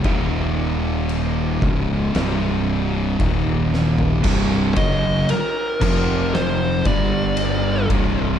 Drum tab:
CC |x---x---x---x---|x-----x---------|
RD |----------------|--x-x-----x-x-x-|
SD |--------o-----o-|-o------o-------|
FT |---------------o|----------------|
BD |o-----o-----o---|o-o---o---o---o-|